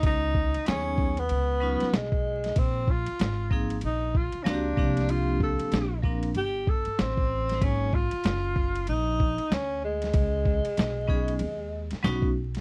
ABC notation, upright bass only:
X:1
M:4/4
L:1/16
Q:"Swing 16ths" 1/4=95
K:Dbmix
V:1 name="Upright bass" clef=bass
D,,3 z E,,4 D,,3 z C,,4 | B,,,3 z A,,,4 B,,,3 z D,,2 =C,,2- | =C,,3 z B,,,4 =G,,,3 z =A,,,4 | A,,,3 z G,,,4 B,,,3 z =D,,4 |
D,,3 z C,,4 E,,3 z C,,4 |]